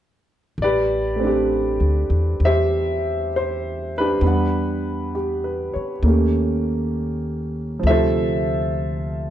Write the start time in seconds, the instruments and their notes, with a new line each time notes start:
0.58 upright bass A1
0.62 grand piano G4 B4 D5
1.16 grand piano A3 C4
1.24 grand piano D4 G4
1.80 upright bass D2
2.10 upright bass E2
2.40 upright bass E2
2.45 grand piano G4 C5 E5
3.36 grand piano C5
3.98 grand piano D4 G4 B4
4.21 upright bass E2, grand piano G3 B3
4.25 grand piano D4 F#5
5.15 grand piano G4
5.44 grand piano B4
5.74 grand piano C#5, muted upright bass stroke
6.03 upright bass D#2, grand piano A3 A#3 C#4
6.08 grand piano G4
7.80 upright bass D2, grand piano F3
7.84 grand piano C3 A3 E5
7.89 grand piano F4 A4 C5